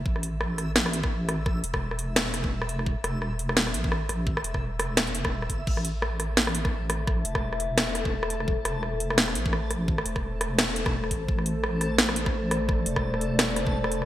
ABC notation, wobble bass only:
X:1
M:4/4
L:1/8
Q:"Swing 16ths" 1/4=171
K:Am
V:1 name="Wobble bass" clef=bass
A,,,8- | A,,, E,,,6- E,,, | z E,,,4 A,,,2 A,,,- | A,,, E,,,6 G,,, |
A,,,8- | A,,, E,,,6- E,,, | z E,,,4 A,,,2 A,,,- | A,,, E,,,6 A,,, |
A,,,8- | A,,, E,,,6- E,,, |]